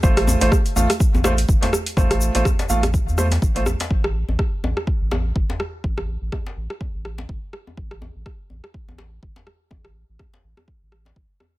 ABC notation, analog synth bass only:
X:1
M:4/4
L:1/16
Q:"Swing 16ths" 1/4=124
K:Flyd
V:1 name="Analog synth bass" clef=bass
A,,,3 A,,, z2 A,,, z2 A,,,3 G,,, z3 | A,,,3 A,,, z2 A,,,3 E,,3 A,,,3 z | A,,,3 A,,, z2 A,,, z2 A,,,3 G,,, z3 | A,,,3 A,,, z2 A,,, z2 A,,,3 G,,, z3 |
A,,,3 A,,, z2 A,,, z2 A,,,3 G,,, z3 | A,,,3 A,,, z2 A,,, z2 A,,,3 A,,, z3 |]